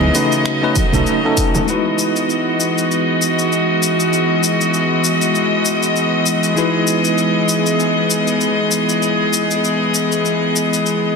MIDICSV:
0, 0, Header, 1, 5, 480
1, 0, Start_track
1, 0, Key_signature, 4, "major"
1, 0, Tempo, 612245
1, 1313, Time_signature, 4, 2, 24, 8
1, 8748, End_track
2, 0, Start_track
2, 0, Title_t, "Tine electric piano"
2, 0, Program_c, 0, 4
2, 0, Note_on_c, 0, 59, 90
2, 0, Note_on_c, 0, 63, 82
2, 0, Note_on_c, 0, 64, 81
2, 0, Note_on_c, 0, 68, 82
2, 0, Note_on_c, 0, 75, 101
2, 85, Note_off_c, 0, 59, 0
2, 88, Note_off_c, 0, 64, 0
2, 89, Note_off_c, 0, 63, 0
2, 92, Note_off_c, 0, 68, 0
2, 93, Note_off_c, 0, 75, 0
2, 107, Note_on_c, 0, 57, 86
2, 112, Note_on_c, 0, 61, 78
2, 117, Note_on_c, 0, 63, 81
2, 118, Note_on_c, 0, 66, 80
2, 123, Note_on_c, 0, 71, 94
2, 454, Note_off_c, 0, 57, 0
2, 456, Note_off_c, 0, 61, 0
2, 459, Note_off_c, 0, 63, 0
2, 459, Note_off_c, 0, 66, 0
2, 462, Note_off_c, 0, 71, 0
2, 484, Note_on_c, 0, 57, 89
2, 491, Note_on_c, 0, 61, 85
2, 493, Note_on_c, 0, 63, 83
2, 496, Note_on_c, 0, 66, 83
2, 502, Note_on_c, 0, 71, 103
2, 586, Note_off_c, 0, 57, 0
2, 589, Note_off_c, 0, 61, 0
2, 590, Note_off_c, 0, 63, 0
2, 592, Note_off_c, 0, 66, 0
2, 595, Note_off_c, 0, 71, 0
2, 724, Note_on_c, 0, 57, 74
2, 728, Note_on_c, 0, 61, 73
2, 732, Note_on_c, 0, 63, 69
2, 735, Note_on_c, 0, 66, 74
2, 742, Note_on_c, 0, 69, 87
2, 934, Note_off_c, 0, 57, 0
2, 936, Note_off_c, 0, 61, 0
2, 938, Note_off_c, 0, 63, 0
2, 940, Note_off_c, 0, 66, 0
2, 943, Note_off_c, 0, 69, 0
2, 972, Note_on_c, 0, 57, 89
2, 978, Note_on_c, 0, 61, 85
2, 983, Note_on_c, 0, 63, 81
2, 987, Note_on_c, 0, 66, 80
2, 988, Note_on_c, 0, 69, 98
2, 1290, Note_off_c, 0, 57, 0
2, 1293, Note_off_c, 0, 61, 0
2, 1295, Note_off_c, 0, 63, 0
2, 1297, Note_off_c, 0, 66, 0
2, 1298, Note_off_c, 0, 69, 0
2, 1299, Note_on_c, 0, 56, 62
2, 1311, Note_on_c, 0, 63, 56
2, 1319, Note_on_c, 0, 64, 54
2, 1326, Note_on_c, 0, 66, 57
2, 1335, Note_on_c, 0, 71, 71
2, 5121, Note_off_c, 0, 56, 0
2, 5128, Note_off_c, 0, 63, 0
2, 5131, Note_off_c, 0, 64, 0
2, 5132, Note_on_c, 0, 56, 67
2, 5135, Note_off_c, 0, 66, 0
2, 5137, Note_on_c, 0, 63, 58
2, 5139, Note_off_c, 0, 71, 0
2, 5148, Note_on_c, 0, 64, 62
2, 5158, Note_on_c, 0, 66, 59
2, 5162, Note_on_c, 0, 71, 73
2, 8748, Note_off_c, 0, 56, 0
2, 8748, Note_off_c, 0, 63, 0
2, 8748, Note_off_c, 0, 64, 0
2, 8748, Note_off_c, 0, 66, 0
2, 8748, Note_off_c, 0, 71, 0
2, 8748, End_track
3, 0, Start_track
3, 0, Title_t, "String section"
3, 0, Program_c, 1, 48
3, 0, Note_on_c, 1, 49, 80
3, 0, Note_on_c, 1, 52, 73
3, 0, Note_on_c, 1, 59, 67
3, 0, Note_on_c, 1, 68, 65
3, 0, Note_on_c, 1, 75, 84
3, 345, Note_off_c, 1, 59, 0
3, 347, Note_off_c, 1, 52, 0
3, 347, Note_off_c, 1, 68, 0
3, 357, Note_on_c, 1, 57, 68
3, 360, Note_on_c, 1, 54, 71
3, 362, Note_on_c, 1, 59, 68
3, 1297, Note_off_c, 1, 49, 0
3, 1297, Note_off_c, 1, 75, 0
3, 1301, Note_off_c, 1, 59, 0
3, 1306, Note_off_c, 1, 57, 0
3, 1307, Note_off_c, 1, 54, 0
3, 1308, Note_on_c, 1, 66, 77
3, 1309, Note_on_c, 1, 52, 66
3, 1311, Note_on_c, 1, 59, 60
3, 1312, Note_on_c, 1, 56, 57
3, 1312, Note_on_c, 1, 75, 61
3, 5119, Note_off_c, 1, 66, 0
3, 5148, Note_on_c, 1, 68, 75
3, 8748, Note_off_c, 1, 52, 0
3, 8748, Note_off_c, 1, 56, 0
3, 8748, Note_off_c, 1, 59, 0
3, 8748, Note_off_c, 1, 68, 0
3, 8748, Note_off_c, 1, 75, 0
3, 8748, End_track
4, 0, Start_track
4, 0, Title_t, "Fretless electric bass"
4, 0, Program_c, 2, 35
4, 731, Note_on_c, 2, 35, 84
4, 809, Note_off_c, 2, 35, 0
4, 8748, End_track
5, 0, Start_track
5, 0, Title_t, "Drums"
5, 6, Note_on_c, 9, 63, 81
5, 85, Note_off_c, 9, 63, 0
5, 116, Note_on_c, 9, 46, 87
5, 117, Note_on_c, 9, 82, 72
5, 195, Note_off_c, 9, 46, 0
5, 195, Note_off_c, 9, 82, 0
5, 252, Note_on_c, 9, 82, 42
5, 331, Note_off_c, 9, 82, 0
5, 357, Note_on_c, 9, 26, 75
5, 357, Note_on_c, 9, 82, 33
5, 435, Note_off_c, 9, 26, 0
5, 435, Note_off_c, 9, 82, 0
5, 593, Note_on_c, 9, 46, 88
5, 593, Note_on_c, 9, 82, 74
5, 597, Note_on_c, 9, 36, 92
5, 602, Note_on_c, 9, 63, 62
5, 671, Note_off_c, 9, 46, 0
5, 671, Note_off_c, 9, 82, 0
5, 676, Note_off_c, 9, 36, 0
5, 681, Note_off_c, 9, 63, 0
5, 726, Note_on_c, 9, 64, 80
5, 735, Note_on_c, 9, 82, 41
5, 804, Note_off_c, 9, 64, 0
5, 813, Note_off_c, 9, 82, 0
5, 835, Note_on_c, 9, 82, 31
5, 914, Note_off_c, 9, 82, 0
5, 1076, Note_on_c, 9, 46, 95
5, 1076, Note_on_c, 9, 82, 73
5, 1078, Note_on_c, 9, 36, 65
5, 1154, Note_off_c, 9, 46, 0
5, 1154, Note_off_c, 9, 82, 0
5, 1156, Note_off_c, 9, 36, 0
5, 1207, Note_on_c, 9, 64, 83
5, 1211, Note_on_c, 9, 63, 85
5, 1213, Note_on_c, 9, 82, 43
5, 1285, Note_off_c, 9, 64, 0
5, 1290, Note_off_c, 9, 63, 0
5, 1291, Note_off_c, 9, 82, 0
5, 1319, Note_on_c, 9, 82, 28
5, 1397, Note_off_c, 9, 82, 0
5, 1557, Note_on_c, 9, 82, 66
5, 1636, Note_off_c, 9, 82, 0
5, 1695, Note_on_c, 9, 82, 40
5, 1774, Note_off_c, 9, 82, 0
5, 1802, Note_on_c, 9, 82, 30
5, 1880, Note_off_c, 9, 82, 0
5, 2040, Note_on_c, 9, 82, 64
5, 2118, Note_off_c, 9, 82, 0
5, 2180, Note_on_c, 9, 82, 39
5, 2259, Note_off_c, 9, 82, 0
5, 2285, Note_on_c, 9, 82, 28
5, 2364, Note_off_c, 9, 82, 0
5, 2522, Note_on_c, 9, 82, 63
5, 2601, Note_off_c, 9, 82, 0
5, 2658, Note_on_c, 9, 82, 39
5, 2736, Note_off_c, 9, 82, 0
5, 2763, Note_on_c, 9, 82, 28
5, 2841, Note_off_c, 9, 82, 0
5, 3001, Note_on_c, 9, 82, 67
5, 3079, Note_off_c, 9, 82, 0
5, 3135, Note_on_c, 9, 82, 39
5, 3214, Note_off_c, 9, 82, 0
5, 3240, Note_on_c, 9, 82, 29
5, 3318, Note_off_c, 9, 82, 0
5, 3478, Note_on_c, 9, 82, 69
5, 3556, Note_off_c, 9, 82, 0
5, 3614, Note_on_c, 9, 82, 38
5, 3692, Note_off_c, 9, 82, 0
5, 3716, Note_on_c, 9, 82, 30
5, 3794, Note_off_c, 9, 82, 0
5, 3954, Note_on_c, 9, 82, 69
5, 4032, Note_off_c, 9, 82, 0
5, 4090, Note_on_c, 9, 82, 40
5, 4169, Note_off_c, 9, 82, 0
5, 4196, Note_on_c, 9, 82, 30
5, 4274, Note_off_c, 9, 82, 0
5, 4432, Note_on_c, 9, 82, 67
5, 4510, Note_off_c, 9, 82, 0
5, 4570, Note_on_c, 9, 82, 40
5, 4649, Note_off_c, 9, 82, 0
5, 4674, Note_on_c, 9, 82, 31
5, 4752, Note_off_c, 9, 82, 0
5, 4909, Note_on_c, 9, 82, 71
5, 4987, Note_off_c, 9, 82, 0
5, 5045, Note_on_c, 9, 82, 40
5, 5124, Note_off_c, 9, 82, 0
5, 5151, Note_on_c, 9, 82, 31
5, 5230, Note_off_c, 9, 82, 0
5, 5388, Note_on_c, 9, 82, 67
5, 5467, Note_off_c, 9, 82, 0
5, 5524, Note_on_c, 9, 82, 40
5, 5602, Note_off_c, 9, 82, 0
5, 5629, Note_on_c, 9, 82, 30
5, 5708, Note_off_c, 9, 82, 0
5, 5869, Note_on_c, 9, 82, 71
5, 5948, Note_off_c, 9, 82, 0
5, 6008, Note_on_c, 9, 82, 40
5, 6086, Note_off_c, 9, 82, 0
5, 6114, Note_on_c, 9, 82, 28
5, 6192, Note_off_c, 9, 82, 0
5, 6353, Note_on_c, 9, 82, 72
5, 6432, Note_off_c, 9, 82, 0
5, 6488, Note_on_c, 9, 82, 39
5, 6566, Note_off_c, 9, 82, 0
5, 6592, Note_on_c, 9, 82, 32
5, 6670, Note_off_c, 9, 82, 0
5, 6832, Note_on_c, 9, 82, 73
5, 6911, Note_off_c, 9, 82, 0
5, 6971, Note_on_c, 9, 82, 40
5, 7050, Note_off_c, 9, 82, 0
5, 7076, Note_on_c, 9, 82, 30
5, 7155, Note_off_c, 9, 82, 0
5, 7317, Note_on_c, 9, 82, 67
5, 7395, Note_off_c, 9, 82, 0
5, 7455, Note_on_c, 9, 82, 40
5, 7534, Note_off_c, 9, 82, 0
5, 7561, Note_on_c, 9, 82, 29
5, 7639, Note_off_c, 9, 82, 0
5, 7796, Note_on_c, 9, 82, 68
5, 7874, Note_off_c, 9, 82, 0
5, 7935, Note_on_c, 9, 82, 38
5, 8013, Note_off_c, 9, 82, 0
5, 8040, Note_on_c, 9, 82, 31
5, 8118, Note_off_c, 9, 82, 0
5, 8279, Note_on_c, 9, 82, 70
5, 8357, Note_off_c, 9, 82, 0
5, 8416, Note_on_c, 9, 82, 40
5, 8495, Note_off_c, 9, 82, 0
5, 8516, Note_on_c, 9, 82, 30
5, 8594, Note_off_c, 9, 82, 0
5, 8748, End_track
0, 0, End_of_file